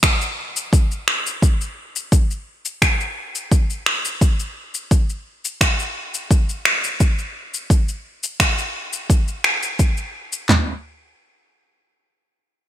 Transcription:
0.03 finger snap, kick, shaker
0.21 shaker
0.56 shaker
0.73 kick, shaker
0.92 shaker
1.08 finger snap
1.26 shaker
1.42 kick, shaker
1.61 shaker
1.96 shaker
2.12 kick, shaker
2.31 shaker
2.65 shaker
2.82 finger snap, kick, shaker
3.01 shaker
3.35 shaker
3.52 kick, shaker
3.70 shaker
3.86 finger snap
4.05 shaker
4.21 kick, shaker
4.40 shaker
4.74 shaker
4.91 kick, shaker
5.10 shaker
5.45 shaker
5.61 finger snap, kick, shaker
5.79 shaker
6.14 shaker
6.31 kick, shaker
6.49 shaker
6.65 finger snap
6.84 shaker
7.00 kick, shaker
7.19 shaker
7.54 shaker
7.70 kick, shaker
7.89 shaker
8.23 shaker
8.40 finger snap, kick, shaker
8.58 shaker
8.93 shaker
9.10 kick, shaker
9.28 shaker
9.44 finger snap
9.63 shaker
9.79 kick, shaker
9.97 shaker
10.32 shaker
10.49 snare, clap, floor tom

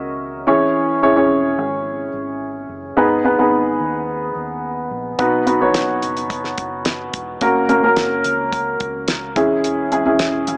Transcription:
Already playing: C#2 C#4 F#4 A#4 C#5 D#5 E5
0.47 E1 E3 C#4 E4 G#4 C#5
1.02 C#4 E4 G#4 C#5
1.16 E1 C#4 E4 G#4 C#5
1.58 G#1
2.14 G#1
2.69 F#1
2.97 G#1 G#2 B3 D#4 G#4 B4
3.24 B3 D#4 G#4 B4
3.38 G#1 B3 D#4 G#4 B4
3.80 D#2
4.36 D#2
4.91 A#1
5.19 B1 B2 B3 D#4 F#4 B4, kick, closed hi-hat
5.47 B3 D#4 F#4 B4, closed hi-hat
5.61 B1 B3 D#4 F#4 C#5
5.74 snare, closed hi-hat
6.02 F#1, closed hi-hat
6.17 closed hi-hat
6.30 kick, closed hi-hat
6.44 snare
6.58 F#1, kick, closed hi-hat
6.85 snare, closed hi-hat
7.13 E1, kick, closed hi-hat
7.41 F#1 A#3 C#4 F#4 A#4, kick, closed hi-hat
7.69 A#3 C#4 F#4 A#4, closed hi-hat
7.83 F#1 A#3 C#4 F#4 A#4
7.97 snare, closed hi-hat
8.24 C#2, closed hi-hat
8.53 kick, closed hi-hat
8.80 C#2, kick, closed hi-hat
9.08 snare, closed hi-hat
9.36 E1 E3 G#3 C#4 E4 G#4, kick, closed hi-hat
9.64 closed hi-hat
9.92 G#3 C#4 E4 G#4, closed hi-hat
10.05 E1 G#3 C#4 E4 G#4
10.19 snare, closed hi-hat
10.47 G#1, closed hi-hat

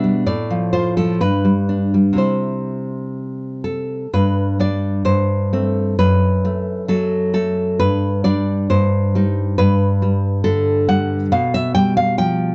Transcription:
Already playing: B2 D4 E5
0.04 G3
0.26 A2 D5
0.50 F3
0.73 F4 C5
0.97 F3 A4
1.21 G2 B4
1.44 G3
1.69 D4
1.94 G3
2.13 C3 G3 E4
2.18 C5
3.64 A4
4.13 G2 B4
4.59 G3 D4 D5
5.05 G2 C5
5.53 A3 C4
5.99 F#2 B4
6.45 A3
6.88 F#3 A4
7.34 A3 A4
7.80 G2 B4
8.24 G3 D4 D5
8.70 G2 C5
9.15 G3 D#4
9.58 G2 B4
10.02 G3
10.44 D3 A4
10.88 G3 F#5
11.32 B2 F5
11.54 E5
11.75 G3 G5
11.97 F5
12.18 F3 G5

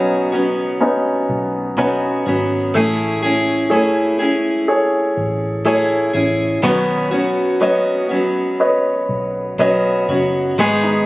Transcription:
Already playing: B1 B2 F#3 B3 C#4 D#4 F#4
0.32 F#3 B3 C#4 F#4
0.80 B3 C#4 D#4
1.29 B1
1.77 B1 F#3 B3 C#4 D#4 F#4
2.26 G#1 F#3 B3 C#4 F#4
2.74 A1 A3 C#4 E4 G#4
3.22 C#4 E4 G#4
3.70 A3 C#4 E4 G#4 A4 C#5
4.19 C#4 E4 G#4
4.68 G#4 A4 C#5
5.17 A1
5.65 A3 C#4 E4 G#4 A4 C#5
6.13 A1 C#4 E4 G#4
6.62 B1 B2 D#3 F#3 B3 C#4 F#4
7.11 F#3 B3 C#4 F#4
7.60 F#3 B3 C#4 F#4 B4 C#5 D#5
8.09 F#3 B3 C#4 F#4
8.60 B4 C#5 D#5
9.09 B1
9.58 B1 F#3 B3 C#4 F#4 B4 C#5 D#5
10.08 F#1 F#3 B3 C#4 F#4
10.58 G#1 G#2 D#3 G#3 B3 D#4 G#4
10.83 D#4

